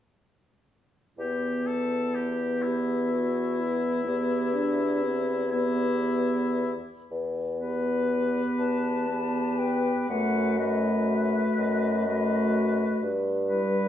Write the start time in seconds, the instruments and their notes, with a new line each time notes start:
1.17 bassoon E2, french horn B3, clarinet E4, oboe G4
1.67 oboe A4
2.15 oboe G4
2.62 oboe E4, clarinet G4
3.11 clarinet F#4
3.59 clarinet E4
4.05 bassoon E2, french horn B3, clarinet G4
4.54 french horn D4
5.02 french horn C4
5.51 french horn B3, oboe E4, clarinet G4
7.11 bassoon E2
7.59 french horn B3, clarinet G4, oboe B4
8.59 bassoon E2, flute A5
9.09 french horn B3, clarinet G4, oboe B4
9.59 flute G5
10.09 bassoon F#2, french horn A3, clarinet F#4, oboe B4, flute F#5
10.57 french horn A3, clarinet F#4, oboe B4, flute D#5
11.09 flute E5
11.58 bassoon F#2, flute D#5
12.07 french horn A3, clarinet F#4, oboe B4
13.02 bassoon G2
13.48 french horn G3, clarinet E4, oboe B4